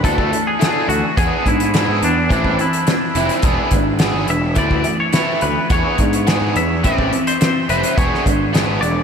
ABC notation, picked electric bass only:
X:1
M:4/4
L:1/16
Q:1/4=106
K:Emix
V:1 name="Picked electric bass" clef=bass
D,,2 z4 D,, z E,, z G,,3 G,, E,,2 | A,,,2 z4 =F,,, z E,,, z G,,,3 G,,, E,,,2 | D,,2 z4 D,, z E,, z G,,3 G,, E,,2 | A,,,2 z4 =F,,, z E,,, z G,,,3 G,,, E,,,2 |]